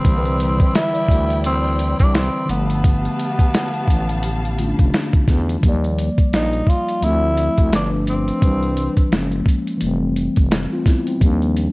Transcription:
0.00 2.43 D3 medium
0.00 0.71 C4 loud
0.00 5.59 B5 medium
0.05 0.64 C2 loud
0.05 2.45 E3 medium
0.05 2.46 G3 medium
0.05 2.47 E4 medium
0.05 2.47 D5 medium
0.05 2.47 G5 medium
0.05 kick loud
0.05 closed hi-hat medium
0.11 0.15 A#3 medium
0.17 2.51 B4 medium
0.25 closed hi-hat soft
0.40 closed hi-hat medium
0.60 kick medium
0.60 closed hi-hat soft
0.75 1.41 E4 loud
0.75 snare loud
0.75 closed hi-hat medium
0.94 closed hi-hat soft
1.08 1.95 D2 medium
1.08 kick medium
1.08 closed hi-hat medium
1.30 closed hi-hat soft
1.44 1.96 C4 loud
1.44 closed hi-hat medium
1.79 closed hi-hat medium
1.99 2.29 C2 medium
1.99 2.16 D4 medium
1.99 kick medium
1.99 closed hi-hat soft
2.15 2.49 C4 medium
2.15 snare loud
2.15 closed hi-hat medium
2.46 3.08 G1 loud
2.46 4.53 D3 medium
2.46 4.54 F3 medium
2.46 closed hi-hat medium
2.50 4.56 A3 medium
2.50 4.90 B3 medium
2.50 5.60 G4 medium
2.50 5.60 F5 medium
2.50 5.60 A5 medium
2.55 4.57 B3 medium
2.70 closed hi-hat medium
2.84 kick loud
2.84 closed hi-hat medium
3.05 closed hi-hat soft
3.19 closed hi-hat medium
3.39 kick medium
3.39 closed hi-hat soft
3.54 snare loud
3.54 closed hi-hat medium
3.74 closed hi-hat soft
3.88 4.74 A1 medium
3.88 kick medium
3.88 closed hi-hat medium
4.09 closed hi-hat soft
4.23 closed hi-hat medium
4.45 closed hi-hat soft
4.57 5.62 D3 medium
4.57 5.64 A3 medium
4.57 5.63 F4 medium
4.57 closed hi-hat medium
4.62 4.68 C#4 soft
4.69 5.68 D4 medium
4.79 4.91 F1 medium
4.79 kick medium
4.79 closed hi-hat soft
4.94 snare loud
4.94 closed hi-hat medium
5.13 kick loud
5.13 closed hi-hat soft
5.28 5.58 E2 medium
5.28 kick loud
5.28 snare soft
5.28 closed hi-hat medium
5.49 closed hi-hat medium
5.59 6.10 D#2 loud
5.59 6.98 F3 medium
5.59 5.70 F#3 medium
5.59 kick loud
5.59 closed hi-hat medium
5.66 7.03 G3 medium
5.66 7.01 A#3 medium
5.66 7.03 D5 medium
5.84 closed hi-hat soft
5.98 closed hi-hat medium
6.18 kick loud
6.18 closed hi-hat soft
6.33 6.62 A#1 loud
6.33 6.71 D#4 medium
6.33 snare loud
6.33 closed hi-hat medium
6.53 closed hi-hat soft
6.67 7.06 F4 loud
6.67 kick medium
6.67 closed hi-hat medium
6.89 closed hi-hat soft
7.01 7.49 D2 loud
7.01 7.70 F3 medium
7.01 7.72 A3 medium
7.01 7.73 C4 medium
7.01 7.73 E4 medium
7.01 closed hi-hat medium
7.06 7.74 E4 medium
7.37 closed hi-hat medium
7.58 7.70 D2 medium
7.58 kick medium
7.58 closed hi-hat soft
7.71 8.31 G1 loud
7.71 8.41 F3 medium
7.71 8.42 A3 medium
7.71 7.90 D4 medium
7.71 8.43 B4 medium
7.71 snare loud
7.71 closed hi-hat medium
7.76 8.44 D4 medium
8.07 9.09 C4 medium
8.07 closed hi-hat medium
8.28 closed hi-hat soft
8.41 8.89 C2 medium
8.41 8.49 D#3 medium
8.41 9.12 G3 medium
8.41 9.13 B4 medium
8.41 kick loud
8.41 closed hi-hat medium
8.46 9.15 E3 medium
8.46 9.14 D4 medium
8.63 closed hi-hat soft
8.77 closed hi-hat medium
8.97 kick medium
8.97 closed hi-hat soft
9.10 9.42 F#1 medium
9.10 9.81 F3 medium
9.10 9.82 G#3 medium
9.10 9.82 A#3 medium
9.10 snare loud
9.10 closed hi-hat medium
9.15 9.21 C4 medium
9.22 9.87 C#4 medium
9.32 closed hi-hat soft
9.46 kick medium
9.46 closed hi-hat medium
9.67 closed hi-hat medium
9.77 11.16 E3 medium
9.77 10.15 G3 medium
9.77 closed hi-hat medium
9.82 10.29 F1 loud
9.82 10.17 A3 medium
9.87 10.19 C4 medium
10.16 closed hi-hat medium
10.36 10.67 F1 medium
10.36 kick medium
10.36 closed hi-hat soft
10.51 snare loud
10.51 closed hi-hat medium
10.73 10.87 C4 medium
10.73 10.86 F4 medium
10.86 11.06 B3 medium
10.86 11.06 E4 medium
10.86 kick loud
10.86 snare soft
10.86 closed hi-hat medium
11.07 11.19 G3 medium
11.07 11.40 C4 medium
11.07 closed hi-hat soft
11.17 11.68 D#2 loud
11.17 11.72 F3 medium
11.17 11.72 G3 medium
11.17 kick loud
11.22 11.72 A#3 medium
11.22 closed hi-hat medium
11.27 11.72 D4 medium
11.42 closed hi-hat soft
11.57 closed hi-hat medium

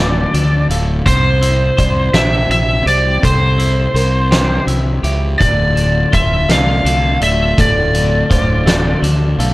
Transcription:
0.00 0.25 D1 medium
0.00 0.69 D2 medium
0.00 0.33 D3 medium
0.00 0.70 A3 medium
0.00 1.05 F4 medium
0.00 0.66 D5 medium
0.00 0.70 D5 medium
0.34 0.65 D2 medium
0.34 1.06 D3 medium
0.34 closed hi-hat medium
0.69 1.01 D1 medium
0.69 1.07 A3 medium
0.69 1.06 F5 medium
0.69 closed hi-hat medium
1.06 1.69 C2 medium
1.06 2.87 C3 medium
1.06 1.78 C5 medium
1.06 2.18 C5 medium
1.06 kick medium
1.06 closed hi-hat medium
1.42 2.48 E4 medium
1.42 closed hi-hat medium
1.77 2.10 C2 medium
1.77 3.59 C5 medium
1.77 2.15 D5 medium
1.77 kick medium
1.77 closed hi-hat medium
2.14 2.46 A#1 medium
2.14 2.84 G4 medium
2.14 2.85 C5 medium
2.14 2.50 E5 medium
2.14 snare medium
2.14 closed hi-hat medium
2.50 2.82 A#1 medium
2.50 3.57 E4 medium
2.50 2.88 E5 medium
2.50 closed hi-hat medium
2.86 3.18 C2 medium
2.86 4.30 G4 medium
2.86 3.23 C5 medium
2.86 3.25 D5 medium
2.86 closed hi-hat soft
3.23 3.86 C2 medium
3.23 5.04 C3 medium
3.23 3.95 A4 medium
3.23 4.64 C5 medium
3.23 kick medium
3.23 closed hi-hat medium
3.58 4.66 E4 medium
3.58 closed hi-hat soft
3.94 4.58 C2 medium
3.94 4.32 A#4 medium
3.94 5.40 C5 medium
3.94 closed hi-hat soft
4.31 5.02 G4 medium
4.31 5.04 C5 medium
4.31 snare medium
4.31 closed hi-hat medium
4.67 4.99 C2 medium
4.67 5.40 E4 soft
4.67 closed hi-hat medium
5.03 5.35 C#2 medium
5.03 5.40 G4 medium
5.03 5.40 E5 medium
5.03 closed hi-hat medium
5.40 6.04 D1 medium
5.40 7.21 D2 medium
5.40 9.54 D3 medium
5.40 9.54 A3 medium
5.40 9.54 F4 medium
5.40 6.14 D5 medium
5.40 6.13 D5 medium
5.40 kick medium
5.40 closed hi-hat medium
5.76 6.84 D3 soft
5.76 closed hi-hat soft
6.12 6.45 D1 medium
6.12 7.93 F4 medium
6.12 6.49 E5 medium
6.12 6.51 E5 medium
6.12 kick medium
6.12 closed hi-hat medium
6.48 6.80 C2 medium
6.48 7.20 A3 medium
6.48 7.20 D5 medium
6.48 7.19 F5 medium
6.48 snare medium
6.48 closed hi-hat medium
6.85 7.16 C2 medium
6.85 7.93 D3 medium
6.85 closed hi-hat medium
7.21 7.53 D1 medium
7.21 8.65 A3 medium
7.21 7.57 D5 medium
7.21 7.59 E5 medium
7.21 closed hi-hat medium
7.58 8.21 D1 medium
7.58 9.39 D2 medium
7.58 8.30 A4 medium
7.58 8.99 D5 medium
7.58 kick medium
7.58 closed hi-hat medium
7.95 9.01 D3 medium
7.95 closed hi-hat medium
8.30 8.94 D1 medium
8.30 9.54 F4 medium
8.30 8.66 C5 medium
8.30 kick medium
8.30 closed hi-hat medium
8.66 9.38 A3 medium
8.66 9.38 D5 medium
8.66 snare medium
8.66 closed hi-hat medium
9.02 9.34 D2 medium
9.02 9.54 D3 medium
9.02 closed hi-hat medium
9.38 9.54 B1 medium
9.38 9.54 A3 medium
9.38 9.54 F5 medium
9.38 closed hi-hat medium

